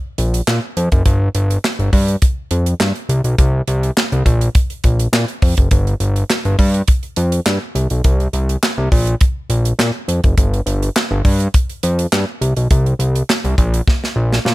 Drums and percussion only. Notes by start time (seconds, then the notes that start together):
0.18 closed hi-hat
0.34 closed hi-hat
0.48 snare, clap
0.77 closed hi-hat
0.92 kick, closed hi-hat
1.06 kick, closed hi-hat
1.35 closed hi-hat
1.51 closed hi-hat
1.64 snare, clap
1.79 closed hi-hat
1.93 kick, open hi-hat
2.08 closed hi-hat
2.22 kick, closed hi-hat
2.51 closed hi-hat
2.66 closed hi-hat
2.80 snare, clap
2.95 closed hi-hat
3.10 closed hi-hat
3.24 closed hi-hat
3.38 kick, closed hi-hat
3.68 closed hi-hat
3.83 closed hi-hat
3.97 snare, clap
4.12 closed hi-hat
4.26 kick, closed hi-hat
4.41 closed hi-hat
4.55 kick, closed hi-hat
4.70 closed hi-hat
4.84 kick, closed hi-hat
5.00 closed hi-hat
5.13 snare, clap
5.28 closed hi-hat
5.42 kick, open hi-hat
5.57 kick, closed hi-hat
5.71 kick, closed hi-hat
5.87 closed hi-hat
6.00 closed hi-hat
6.16 closed hi-hat
6.30 snare, clap
6.45 closed hi-hat
6.59 kick, open hi-hat
6.74 closed hi-hat
6.88 kick, closed hi-hat
7.03 closed hi-hat
7.16 closed hi-hat
7.32 closed hi-hat
7.46 snare, clap
7.75 closed hi-hat
7.90 closed hi-hat
8.04 kick, closed hi-hat
8.20 closed hi-hat
8.33 closed hi-hat
8.49 closed hi-hat
8.63 snare, clap
8.92 kick, open hi-hat
9.07 closed hi-hat
9.21 kick, closed hi-hat
9.50 closed hi-hat
9.65 closed hi-hat
9.79 snare, clap
10.09 closed hi-hat
10.24 kick, closed hi-hat
10.38 kick, closed hi-hat
10.54 closed hi-hat
10.67 closed hi-hat
10.82 closed hi-hat
10.96 snare, clap
11.25 kick, open hi-hat
11.40 closed hi-hat
11.54 kick, closed hi-hat
11.70 closed hi-hat
11.83 closed hi-hat
11.99 closed hi-hat
12.13 snare, clap
12.42 closed hi-hat
12.57 closed hi-hat
12.71 kick, closed hi-hat
12.86 closed hi-hat
13.00 closed hi-hat
13.15 closed hi-hat
13.30 snare, clap
13.45 closed hi-hat
13.58 kick, closed hi-hat
13.74 closed hi-hat
13.88 kick, snare
14.04 snare
14.33 snare
14.46 snare